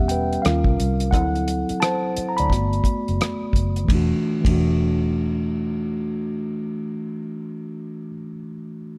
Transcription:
0.00 0.37 E1 medium
0.00 0.40 G3 medium
0.00 0.41 B3 soft
0.00 0.41 C#4 soft
0.00 0.45 G4 medium
0.00 0.10 E5 medium
0.00 0.41 F#5 medium
0.08 0.42 B4 medium
0.08 0.41 G5 medium
0.08 closed hi-hat medium
0.33 closed hi-hat soft
0.42 0.64 D#2 medium
0.42 1.09 G3 medium
0.42 1.10 C#4 soft
0.42 1.10 F4 medium
0.42 1.10 A#4 medium
0.42 1.14 F5 medium
0.42 cross-stick medium
0.42 closed hi-hat medium
0.64 0.77 C2 medium
0.64 kick medium
0.80 1.14 C2 medium
0.80 closed hi-hat medium
1.00 closed hi-hat soft
1.11 1.63 D2 medium
1.11 2.12 F#3 soft
1.11 2.12 C4 soft
1.11 2.13 E4 soft
1.11 1.78 A4 medium
1.11 1.83 F#5 medium
1.11 kick medium
1.11 closed hi-hat medium
1.35 closed hi-hat soft
1.48 closed hi-hat medium
1.69 muted fingered electric bass stroke soft
1.69 closed hi-hat soft
1.80 2.27 C5 medium
1.80 2.30 A5 medium
1.80 cross-stick loud
1.80 closed hi-hat medium
2.17 muted fingered electric bass stroke soft
2.17 closed hi-hat medium
2.29 2.38 A#5 medium
2.37 2.50 D2 medium
2.37 3.38 D5 medium
2.37 3.37 B5 medium
2.37 closed hi-hat soft
2.50 2.81 G1 medium
2.50 3.85 A3 soft
2.50 3.85 B3 soft
2.50 3.85 F#4 soft
2.50 kick medium
2.50 cross-stick soft
2.50 closed hi-hat medium
2.73 closed hi-hat soft
2.84 kick medium
2.84 closed hi-hat medium
3.08 3.19 F#1 medium
3.08 closed hi-hat soft
3.21 cross-stick medium
3.21 closed hi-hat medium
3.53 3.85 F#1 medium
3.53 kick medium
3.53 closed hi-hat medium
3.76 closed hi-hat soft
3.84 4.09 E3 medium
3.84 4.11 A3 medium
3.88 4.12 E1 medium
3.88 4.13 D4 medium
3.88 kick medium
3.88 ride medium
3.95 4.14 F#4 medium
4.40 8.08 E3 medium
4.40 8.10 A3 medium
4.45 8.11 E1 medium
4.45 8.12 D4 medium
4.45 kick medium
4.45 ride medium
4.51 8.13 F#4 medium

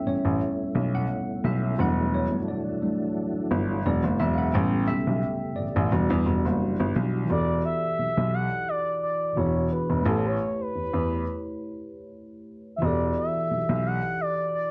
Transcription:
0.00 0.06 G3 medium
0.00 1.75 A3 medium
0.00 0.06 B3 medium
0.00 0.07 C#4 medium
0.00 1.75 C#4 medium
0.00 3.81 E4 medium
0.00 1.45 E5 loud
0.00 1.80 G5 loud
0.06 0.13 A1 soft
0.06 0.37 G3 soft
0.06 0.37 B3 soft
0.06 0.37 C#4 medium
0.06 0.96 C#5 medium
0.25 0.38 A1 medium
0.75 1.05 B1 medium
0.95 1.46 F#5 loud
1.44 1.74 B1 medium
1.44 1.76 E5 medium
1.77 2.25 E1 loud
1.77 4.51 E3 medium
1.77 2.81 F#3 medium
1.77 2.81 G3 medium
1.77 2.81 A3 medium
1.77 4.51 D4 medium
1.77 2.82 D4 medium
1.77 3.82 F#4 medium
1.77 3.82 A4 medium
1.77 2.14 F#5 loud
2.14 2.49 C#5 medium
2.32 2.38 G1 soft
2.48 3.12 D5 medium
2.82 3.13 F#3 soft
2.82 3.13 G3 soft
2.82 3.13 A3 soft
2.82 3.13 D4 medium
3.51 3.81 G1 medium
3.85 4.01 E1 loud
3.85 4.51 F#3 medium
3.85 4.51 G#3 medium
3.85 4.51 D4 medium
3.85 4.54 F#4 medium
3.85 4.54 G#4 medium
3.85 4.21 D5 medium
4.04 4.17 F#1 medium
4.20 4.50 E1 loud
4.20 4.34 E5 loud
4.34 4.38 F5 medium
4.38 4.54 F#5 medium
4.54 4.84 A1 loud
4.54 5.90 C#3 medium
4.54 7.27 G3 medium
4.54 5.53 G3 medium
4.54 5.90 A3 medium
4.54 5.54 B3 medium
4.54 5.54 C#4 medium
4.54 4.89 G5 loud
4.88 4.96 B1 soft
4.88 5.59 E5 loud
5.07 5.21 B1 medium
5.56 5.65 A1 soft
5.56 6.56 D5 medium
5.76 5.90 A1 loud
5.91 6.08 E1 loud
5.91 7.28 E3 medium
5.91 6.91 G3 medium
5.91 7.28 D4 medium
5.91 6.91 D4 medium
5.91 7.28 F#4 medium
5.91 6.91 F#4 medium
6.10 6.24 E2 loud
6.26 6.45 E1 loud
6.45 6.75 F#1 medium
6.80 6.93 G1 medium
6.96 7.26 B1 medium
7.25 9.30 E3 medium
7.25 9.31 E4 medium
7.25 9.32 F#4 medium
7.30 7.60 E1 loud
7.30 9.33 G4 medium
7.30 9.34 A4 medium
7.30 7.62 D5 loud
7.34 7.39 C#5 medium
7.41 9.38 D5 medium
7.65 8.36 E5 loud
7.99 8.06 B1 soft
8.17 8.47 B1 medium
8.34 8.70 F#5 loud
8.69 9.02 D5 loud
9.03 9.39 D5 medium
9.35 9.67 E1 medium
9.35 10.05 E3 medium
9.35 10.03 E4 medium
9.35 10.06 F#4 medium
9.35 10.06 G#4 medium
9.35 9.71 C#5 loud
9.40 9.45 C#5 medium
9.46 10.10 D4 medium
9.72 10.09 B4 medium
9.90 10.04 E1 medium
10.02 10.36 A1 loud
10.02 12.75 A3 medium
10.02 12.77 E4 medium
10.06 12.78 G4 medium
10.06 10.27 A4 medium
10.06 12.79 B4 medium
10.11 10.15 C5 medium
10.17 12.83 C#5 medium
10.26 10.63 C#5 medium
10.61 11.63 B4 medium
10.75 10.82 E2 soft
10.94 11.23 E2 medium
12.76 14.71 E3 medium
12.76 14.71 E4 medium
12.76 12.86 E5 medium
12.82 13.12 E1 loud
12.82 14.71 F#4 medium
12.82 14.71 G4 medium
12.82 14.71 A4 medium
12.82 13.17 D5 loud
12.87 14.71 D5 medium
13.19 13.88 E5 loud
13.51 13.58 B1 soft
13.69 13.99 B1 medium
13.87 14.22 F#5 loud
14.21 14.54 D5 loud
14.55 14.71 D5 loud

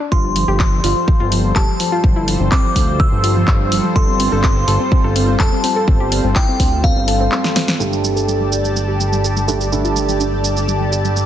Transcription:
0.00 0.07 D4 medium
0.12 0.45 G1 loud
0.12 7.76 G3 medium
0.12 7.76 F4 medium
0.12 0.19 F4 loud
0.12 7.76 A4 medium
0.12 7.76 C5 medium
0.12 0.55 C6 medium
0.12 kick loud
0.24 0.31 F3 medium
0.36 0.43 F3 medium
0.36 open hi-hat loud
0.48 0.81 G1 medium
0.48 0.55 G4 medium
0.60 0.67 F3 medium
0.60 1.47 C6 medium
0.60 kick loud
0.60 clap loud
0.72 0.79 F3 medium
0.84 0.94 G1 medium
0.84 0.91 F4 medium
0.84 open hi-hat loud
0.96 1.03 F3 medium
1.08 1.15 F3 medium
1.08 kick loud
1.20 1.53 G1 loud
1.20 1.27 F4 medium
1.32 1.39 F3 medium
1.32 open hi-hat medium
1.44 1.51 F3 medium
1.56 1.66 F1 medium
1.56 1.63 G4 medium
1.56 2.42 A5 medium
1.56 kick loud
1.56 clap loud
1.68 1.75 F3 medium
1.80 1.87 F3 medium
1.80 open hi-hat loud
1.92 1.99 F4 medium
2.04 2.37 G1 medium
2.04 2.11 F3 medium
2.04 kick loud
2.16 2.23 E4 medium
2.28 2.35 F3 medium
2.28 open hi-hat medium
2.40 2.50 G1 medium
2.40 2.47 F3 medium
2.51 2.59 C4 medium
2.51 2.95 D6 medium
2.51 kick loud
2.51 clap loud
2.64 2.71 F3 medium
2.75 3.09 D2 medium
2.75 2.83 F3 medium
2.75 kick medium
2.75 open hi-hat loud
2.99 3.07 F3 medium
2.99 3.87 E6 medium
2.99 kick loud
3.12 3.45 G1 medium
3.12 3.19 F3 medium
3.24 3.31 F4 medium
3.24 open hi-hat loud
3.36 3.43 F3 medium
3.48 3.81 G1 medium
3.48 3.55 F3 medium
3.48 kick loud
3.48 clap loud
3.72 3.79 F3 medium
3.72 open hi-hat loud
3.84 3.91 F3 medium
3.96 4.29 G1 loud
3.96 4.03 A4 loud
3.96 4.39 C6 medium
3.96 kick loud
4.08 4.15 C4 medium
4.20 4.27 C4 medium
4.20 open hi-hat loud
4.32 4.65 G1 medium
4.32 4.39 A4 medium
4.44 4.51 C4 medium
4.44 5.30 C6 medium
4.44 kick loud
4.44 clap loud
4.56 4.63 C4 medium
4.68 4.78 G1 medium
4.68 4.75 A4 medium
4.68 open hi-hat medium
4.80 4.87 C4 medium
4.92 4.99 C4 medium
4.92 kick loud
5.04 5.37 G1 loud
5.04 5.11 A4 medium
5.16 5.23 C4 medium
5.16 open hi-hat loud
5.28 5.35 C4 medium
5.40 5.50 F1 medium
5.40 5.47 A4 medium
5.40 6.27 A5 medium
5.40 kick loud
5.40 clap loud
5.52 5.59 C4 medium
5.64 5.71 C4 medium
5.64 open hi-hat loud
5.76 5.83 A4 medium
5.88 6.21 G1 medium
5.88 5.95 C4 medium
5.88 kick loud
6.00 6.07 G4 medium
6.12 6.19 C4 medium
6.12 open hi-hat loud
6.24 6.34 G1 medium
6.24 6.31 C4 medium
6.36 6.43 E4 medium
6.36 6.79 G5 medium
6.36 kick loud
6.36 clap loud
6.48 6.55 C4 medium
6.60 6.93 D2 medium
6.60 6.67 C4 medium
6.60 kick medium
6.60 open hi-hat loud
6.84 6.92 C4 medium
6.84 7.71 F5 medium
6.84 kick loud
6.96 7.29 G1 medium
6.96 7.03 C4 medium
7.08 7.15 A4 medium
7.08 open hi-hat loud
7.20 7.27 C4 medium
7.32 7.39 C4 medium
7.32 clap loud
7.44 snare medium
7.56 7.63 C4 medium
7.56 snare medium
7.56 open hi-hat loud
7.68 7.75 C4 medium
7.68 snare medium
7.80 11.26 G1 medium
7.80 9.45 G2 medium
7.80 9.45 G3 medium
7.80 9.45 A3 medium
7.80 9.45 D4 medium
7.80 7.87 G4 medium
7.80 9.45 G4 medium
7.80 11.26 G4 medium
7.80 9.45 A4 medium
7.80 11.26 A4 medium
7.80 11.26 D5 medium
7.80 11.26 A5 medium
7.80 shaker soft
7.92 7.99 G3 medium
7.92 shaker soft
8.04 8.11 G3 medium
8.04 shaker medium
8.16 8.23 A4 medium
8.16 shaker soft
8.28 8.35 G3 medium
8.28 shaker soft
8.40 8.47 G3 medium
8.52 8.59 G4 medium
8.52 shaker medium
8.64 8.71 G3 medium
8.64 shaker soft
8.76 8.83 G3 medium
8.76 shaker soft
8.88 8.95 G4 medium
9.00 9.07 G3 medium
9.00 shaker medium
9.12 9.19 G3 medium
9.12 shaker soft
9.24 9.32 A4 medium
9.24 shaker soft
9.36 9.43 G3 medium
9.36 shaker soft
9.48 9.56 G2 medium
9.48 9.55 G3 medium
9.48 9.56 G3 medium
9.48 9.56 A3 medium
9.48 9.56 D4 medium
9.48 9.56 G4 medium
9.48 9.56 A4 medium
9.48 shaker medium
9.60 9.67 G4 medium
9.60 shaker soft
9.72 11.26 G2 medium
9.72 9.80 G3 medium
9.72 11.26 G3 medium
9.72 11.26 A3 medium
9.72 11.26 D4 medium
9.72 11.26 G4 medium
9.72 11.26 A4 medium
9.72 shaker soft
9.84 9.91 F4 medium
9.84 shaker soft
9.96 10.04 G3 medium
9.96 shaker medium
10.08 10.16 G3 medium
10.08 shaker soft
10.20 10.28 D4 medium
10.20 shaker soft
10.32 10.39 G3 medium
10.44 10.51 G3 medium
10.44 shaker medium
10.57 shaker soft
10.68 10.75 G3 medium
10.68 shaker soft
10.80 10.87 G3 medium
10.92 10.99 G4 medium
10.92 shaker medium
11.04 11.11 G3 medium
11.04 shaker soft
11.16 11.23 G3 medium
11.16 shaker soft

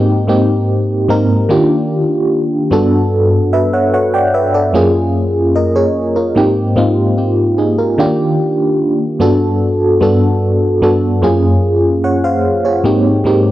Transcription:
0.00 0.13 G#2 medium
0.00 0.14 A#3 medium
0.00 0.14 C4 medium
0.00 0.14 D#4 medium
0.00 0.14 G4 loud
0.27 0.80 G#2 medium
0.27 0.80 A#3 medium
0.27 0.81 C4 medium
0.27 0.81 D#4 medium
0.27 0.81 G4 loud
1.08 1.49 G#2 medium
1.08 1.48 A#3 medium
1.08 1.50 C4 medium
1.08 1.50 D#4 medium
1.08 1.50 A#4 loud
1.49 2.47 D#3 medium
1.49 2.47 A#3 medium
1.49 2.47 D4 medium
1.49 2.47 F4 medium
1.49 2.48 G4 loud
2.71 3.36 G2 loud
2.71 3.36 B3 medium
2.71 3.37 D4 medium
2.71 3.37 F#4 medium
2.71 3.37 A4 loud
3.53 3.72 B4 medium
3.53 3.72 E5 medium
3.73 3.93 C#5 medium
3.73 3.92 F#5 medium
3.94 4.13 C#5 medium
3.94 4.13 F#5 medium
4.14 4.33 D5 medium
4.14 4.33 G5 medium
4.34 4.53 B4 medium
4.34 4.53 E5 medium
4.54 4.93 A4 medium
4.54 4.93 D5 medium
4.73 6.03 F#2 medium
4.73 6.04 A#3 medium
4.73 6.04 C#4 medium
4.73 5.56 F4 medium
4.73 5.56 G#4 loud
5.56 5.75 A#4 medium
5.56 5.75 D#5 medium
5.76 6.14 G#4 medium
5.76 6.14 C#5 medium
6.16 6.55 F4 medium
6.16 6.55 A#4 medium
6.35 6.62 G#2 medium
6.35 6.62 A#3 medium
6.35 6.63 C4 medium
6.35 6.63 D#4 medium
6.35 6.63 G4 medium
6.76 7.29 G#2 loud
6.76 7.29 A#3 medium
6.76 7.17 C4 medium
6.76 7.18 D#4 medium
6.76 7.18 F4 loud
7.18 7.57 C4 medium
7.18 7.56 G4 medium
7.58 7.78 D#4 medium
7.58 7.77 G#4 medium
7.78 7.98 F4 medium
7.78 8.17 A#4 medium
7.98 8.96 D#3 loud
7.98 8.96 A#3 medium
7.98 8.96 D4 medium
7.98 8.96 F4 medium
7.98 8.97 G4 loud
9.19 9.85 G2 medium
9.19 9.85 B3 medium
9.19 9.85 D4 medium
9.19 9.85 F#4 medium
9.19 9.86 A4 loud
10.00 10.53 G2 medium
10.00 10.53 B3 medium
10.00 10.54 D4 medium
10.00 10.54 F#4 medium
10.00 10.54 A4 loud
10.82 11.23 G2 medium
10.82 11.23 B3 medium
10.82 11.23 D4 medium
10.82 11.23 F#4 medium
10.82 11.24 A4 medium
11.22 12.52 F#2 medium
11.22 12.52 A#3 medium
11.22 12.53 C#4 medium
11.22 12.53 F4 medium
11.22 11.64 G#4 loud
12.04 12.24 C#5 medium
12.04 12.23 F#5 medium
12.24 12.63 C5 medium
12.24 12.63 F5 medium
12.65 13.04 G#4 medium
12.65 13.03 C#5 medium
12.84 13.11 G#2 medium
12.84 13.11 A#3 medium
12.84 13.11 C4 medium
12.84 13.11 D#4 medium
12.84 13.12 G4 medium
13.24 13.52 G#2 medium
13.24 13.52 A#3 medium
13.24 13.52 C4 medium
13.24 13.52 D#4 medium
13.24 13.52 G4 loud

